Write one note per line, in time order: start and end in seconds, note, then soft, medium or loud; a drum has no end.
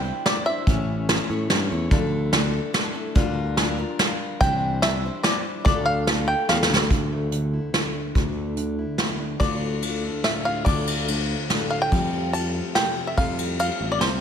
0.00 0.27 G5 medium
0.05 0.25 G3 soft
0.05 0.26 D4 soft
0.05 0.26 E4 soft
0.05 0.25 C5 medium
0.26 0.46 G3 medium
0.26 0.47 D4 medium
0.26 0.47 E4 medium
0.26 0.47 C5 medium
0.26 0.47 D5 medium
0.26 snare medium
0.26 closed hi-hat medium
0.46 0.68 D4 soft
0.46 0.68 E4 soft
0.46 0.68 C5 medium
0.46 1.25 E5 medium
0.50 0.69 G3 soft
0.67 1.17 A1 loud
0.67 1.09 A2 medium
0.67 1.91 E3 medium
0.67 1.09 A3 medium
0.67 1.08 C#4 medium
0.67 1.10 E4 medium
0.67 1.09 C#5 medium
0.67 kick loud
0.67 closed hi-hat medium
1.09 1.29 A3 medium
1.09 1.30 C#4 medium
1.09 1.29 E4 medium
1.09 1.29 C#5 medium
1.09 snare medium
1.09 closed hi-hat medium
1.30 1.48 A2 medium
1.30 1.49 A3 soft
1.30 1.49 C#4 soft
1.30 1.51 E4 medium
1.30 1.50 C#5 medium
1.50 1.69 G2 medium
1.50 1.71 A3 medium
1.50 1.71 C#4 medium
1.50 1.71 E4 medium
1.50 1.71 C#5 medium
1.50 snare medium
1.50 closed hi-hat medium
1.71 1.90 E2 medium
1.71 1.91 A3 soft
1.71 1.92 C#4 soft
1.71 1.91 E4 medium
1.71 1.92 C#5 medium
1.91 2.59 D2 loud
1.91 2.38 D3 medium
1.91 2.38 F3 medium
1.91 2.32 A3 medium
1.91 2.33 D4 medium
1.91 2.33 E4 medium
1.91 2.33 A4 loud
1.91 kick loud
1.91 closed hi-hat medium
2.33 2.72 A3 medium
2.33 2.74 D4 medium
2.33 2.73 E4 medium
2.33 2.75 A4 medium
2.33 snare medium
2.33 closed hi-hat medium
2.73 2.95 A3 medium
2.73 2.94 D4 medium
2.73 2.94 E4 medium
2.73 2.93 A4 medium
2.73 snare medium
2.73 closed hi-hat medium
2.94 3.15 A3 soft
2.94 3.15 D4 medium
2.94 3.16 E4 medium
2.94 3.16 A4 medium
3.15 3.83 D2 loud
3.15 3.57 D3 medium
3.15 3.57 G3 medium
3.15 3.58 D4 medium
3.15 3.58 F4 loud
3.15 3.58 A#4 loud
3.15 kick loud
3.15 closed hi-hat medium
3.57 3.78 G3 medium
3.57 3.79 D4 medium
3.57 3.78 F4 medium
3.57 3.77 A#4 medium
3.57 snare medium
3.57 closed hi-hat medium
3.78 3.99 D4 medium
3.78 3.99 F4 soft
3.78 3.99 A#4 medium
3.99 4.41 G3 medium
3.99 4.43 D4 medium
3.99 4.42 F4 medium
3.99 4.42 A#4 medium
3.99 snare medium
3.99 closed hi-hat medium
4.41 5.08 C2 loud
4.41 4.83 C3 medium
4.41 4.83 E3 medium
4.41 4.83 G3 medium
4.41 4.84 D4 medium
4.41 4.83 E4 medium
4.41 4.84 C5 medium
4.41 4.82 G5 loud
4.41 kick loud
4.41 closed hi-hat medium
4.82 5.04 G3 medium
4.82 5.04 D4 medium
4.82 5.05 E4 medium
4.82 5.04 C5 medium
4.82 5.25 E5 medium
4.82 snare medium
4.82 closed hi-hat medium
5.05 5.25 G3 soft
5.05 5.25 D4 soft
5.05 5.25 E4 soft
5.05 5.25 C5 medium
5.23 5.66 G3 medium
5.23 5.67 D4 medium
5.23 5.67 E4 medium
5.23 5.67 C5 medium
5.23 5.64 D5 medium
5.23 snare medium
5.23 closed hi-hat medium
5.65 6.33 D2 loud
5.65 6.08 D3 medium
5.65 6.08 A3 medium
5.65 6.08 D4 medium
5.65 6.08 F4 medium
5.65 6.08 A4 medium
5.65 5.86 D5 medium
5.65 kick loud
5.65 closed hi-hat medium
5.86 6.27 F5 medium
6.07 6.48 A3 medium
6.07 6.49 D4 medium
6.07 6.50 F4 medium
6.07 6.50 A4 medium
6.07 snare medium
6.07 closed hi-hat medium
6.28 6.49 G5 loud
6.49 6.68 E2 medium
6.49 6.70 A3 medium
6.49 6.70 D4 medium
6.49 6.70 F4 medium
6.49 6.69 A4 medium
6.49 6.78 F5 medium
6.49 snare medium
6.63 snare medium
6.70 6.88 D2 medium
6.70 6.92 D4 soft
6.70 6.91 F4 soft
6.70 6.91 A4 medium
6.76 snare loud
6.90 8.16 D2 medium
6.90 7.58 D2 medium
6.90 7.32 D4 medium
6.90 kick loud
6.90 closed hi-hat medium
7.12 8.37 A3 medium
7.32 7.73 D3 medium
7.32 7.94 D4 soft
7.32 closed hi-hat medium
7.53 8.13 E4 medium
7.73 8.56 D3 medium
7.73 snare medium
7.73 closed hi-hat medium
7.95 8.16 D4 medium
8.15 8.83 D2 medium
8.15 9.39 D2 medium
8.15 8.56 D4 medium
8.15 kick medium
8.15 closed hi-hat medium
8.37 9.39 A3 medium
8.57 8.99 D3 medium
8.57 9.19 D4 medium
8.57 closed hi-hat medium
8.79 9.39 E4 medium
8.98 9.81 D3 medium
8.98 snare medium
8.98 closed hi-hat medium
9.20 9.38 D4 medium
9.40 10.65 D2 medium
9.40 10.08 D2 medium
9.40 9.82 D3 medium
9.40 10.04 A3 medium
9.40 9.82 A3 medium
9.40 10.45 D4 medium
9.40 9.82 D4 medium
9.40 9.83 F4 medium
9.40 9.61 F4 medium
9.40 9.84 A4 medium
9.40 10.20 D5 medium
9.40 kick medium
9.40 ride medium
9.62 10.68 F4 medium
9.82 11.07 D3 medium
9.82 10.03 A3 soft
9.82 10.04 D4 soft
9.82 10.03 F4 medium
9.82 10.02 A4 medium
9.82 ride medium
10.03 10.67 A3 medium
10.03 10.24 D4 soft
10.03 10.24 F4 soft
10.03 10.24 A4 soft
10.24 10.66 A2 medium
10.24 10.45 A3 soft
10.24 10.46 D4 soft
10.24 10.45 F4 medium
10.24 10.44 A4 medium
10.24 10.45 E5 medium
10.24 snare medium
10.24 ride medium
10.45 10.64 D4 medium
10.45 10.66 D4 soft
10.45 10.67 F4 soft
10.45 10.66 A4 soft
10.45 10.64 F5 medium
10.65 11.34 D2 medium
10.65 11.92 D2 medium
10.65 11.08 D3 medium
10.65 11.08 A3 medium
10.65 11.29 A3 medium
10.65 11.08 D4 medium
10.65 11.71 D4 medium
10.65 11.10 F4 medium
10.65 11.10 A4 medium
10.65 11.66 D5 medium
10.65 kick medium
10.65 ride medium
10.69 10.88 F4 medium
10.87 11.94 F4 medium
10.87 ride medium
11.08 11.92 D3 medium
11.08 11.50 A3 medium
11.08 11.49 D4 medium
11.08 11.51 F4 medium
11.08 11.51 A4 medium
11.08 ride medium
11.30 11.93 A3 medium
11.50 11.92 A2 medium
11.50 11.92 A3 medium
11.50 11.92 D4 medium
11.50 11.93 F4 medium
11.50 11.93 A4 medium
11.50 snare medium
11.50 ride medium
11.70 11.90 D4 medium
11.70 11.81 F5 medium
11.82 12.33 G5 medium
11.92 13.15 F2 medium
11.92 12.60 F2 medium
11.92 12.36 F3 medium
11.92 12.32 G3 medium
11.92 12.54 G3 medium
11.92 12.97 A3 medium
11.92 12.33 C4 medium
11.92 12.34 F4 medium
11.92 12.14 G4 medium
11.92 12.34 A4 medium
11.92 kick medium
11.92 ride medium
12.14 13.16 G4 medium
12.33 13.22 F3 medium
12.33 12.55 G3 medium
12.33 12.55 C4 soft
12.33 12.55 F4 medium
12.33 12.54 A4 medium
12.33 12.75 A5 medium
12.33 ride soft
12.55 13.18 G3 medium
12.55 12.75 C4 soft
12.55 12.75 F4 soft
12.55 12.76 A4 soft
12.75 13.16 C3 medium
12.75 12.96 G3 soft
12.75 12.97 C4 medium
12.75 12.96 F4 medium
12.75 12.95 A4 medium
12.75 13.07 G5 medium
12.75 snare medium
12.75 ride medium
12.96 13.19 A3 soft
12.96 13.18 C4 soft
12.96 13.18 F4 soft
12.96 13.17 A4 soft
13.07 13.17 E5 medium
13.17 14.21 F2 medium
13.17 13.69 F2 medium
13.17 13.63 F3 medium
13.17 13.58 G3 medium
13.17 13.80 G3 medium
13.17 14.21 A3 medium
13.17 13.59 C4 medium
13.17 13.61 F4 medium
13.17 13.39 G4 medium
13.17 13.62 A4 medium
13.17 13.59 F5 medium
13.17 kick medium
13.17 ride medium
13.39 14.21 G4 medium
13.39 ride medium
13.59 14.21 F3 medium
13.59 13.81 G3 soft
13.59 13.81 C4 medium
13.59 13.81 F4 medium
13.59 13.80 A4 medium
13.59 13.92 F5 medium
13.59 ride soft
13.80 13.99 A1 medium
13.80 14.21 G3 medium
13.80 14.01 C4 soft
13.80 14.02 F4 soft
13.80 14.02 A4 soft
13.92 14.02 D5 medium
14.01 14.20 C2 medium
14.01 14.21 C3 medium
14.01 14.21 G3 soft
14.01 14.21 C4 medium
14.01 14.21 F4 soft
14.01 14.21 A4 medium
14.01 14.21 C5 medium
14.01 snare medium
14.01 ride medium